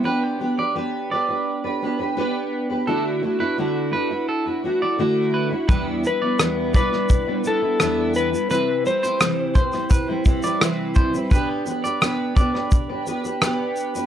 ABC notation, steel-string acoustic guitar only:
X:1
M:4/4
L:1/16
Q:1/4=85
K:G
V:1 name="Steel-string acoustic guitar"
[B,DGB]2 [B,DGB] [DGB] [B,DGB]2 [B,DGB] [DGB]2 [DGB] [B,DGB] [DGB] [B,DGB]3 [DGB] | [D,A,DEF]2 [A,DEF] [DEF] [D,A,DEF]2 [A,DEF] [DEF]2 [DEF] [A,DEF] [DEF] [D,A,DEF]3 [DEF] | [E,,E,G,B,DE]2 [G,B,DE] [G,B,DE] [E,,E,G,B,DE]2 [G,B,DE] [G,B,DE]2 [G,B,DE] [G,B,DE] [G,B,DE] [E,,E,G,B,DE]3 [G,B,DE] | [C,E,G,CEB]2 [G,CEB] [G,CEB] [C,E,G,CE]2 [G,CEB] [G,CE]2 [G,CEB] [G,CEB] [G,CEB] [C,E,G,CEB]3 [G,CEB] |
[B,DGB]2 [B,DGB] [DGB] [B,DGB]2 [B,DGB] [DGB]2 [DGB] [B,DGB] [DGB] [B,DGB]3 [DGB] |]